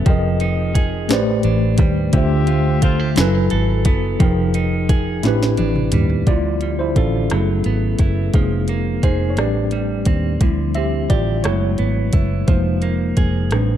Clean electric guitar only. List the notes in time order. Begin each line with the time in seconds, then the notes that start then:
Already playing: B3 A4
0.06 F3
0.41 D#4
0.75 G#4
1.10 A2
1.45 D4
1.78 G3
2.13 D3
2.48 F4
2.82 F4
2.99 G4
3.17 F#3
3.51 A4
3.85 B3
4.20 F3
4.55 D#4
4.89 G#4
5.24 A2
5.58 D4
5.94 G3
6.28 D3
6.62 G3
6.97 F4
7.31 F#3
7.66 B3
8.00 E4
8.35 F3
8.69 A#3
9.04 G#4
9.38 A2
9.72 G3
10.07 C4
10.41 D3
10.76 C4
11.10 G4
11.44 F#3
11.79 B3
12.13 E4
12.48 F3
12.82 A#3
13.17 G#4
13.52 A2